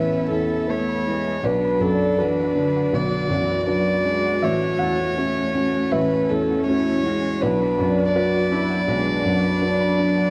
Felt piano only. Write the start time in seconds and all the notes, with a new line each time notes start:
Already playing: A1 E2 E4 A4 B4 E5 F#5
0.30 E2
0.67 E4 A4 B4
1.07 E4
1.43 B1 D5
1.80 F#2
2.18 D4 F#4 B4
2.55 D4
2.93 B1
3.29 F#2
3.66 D4 F#4 B4
4.05 D4
4.42 A1 E5
4.79 E2 F#5
5.18 C#4 F#4 C#5
5.55 C#4
5.92 A1 E5
6.30 E2
6.69 C#4 F#4 C#5
7.06 C#4
7.41 B1 D5
7.79 F#2
8.15 D4 F#4 B4
8.51 D4
8.88 B1
9.24 F#2
9.61 D4 F#4 B4
9.98 D4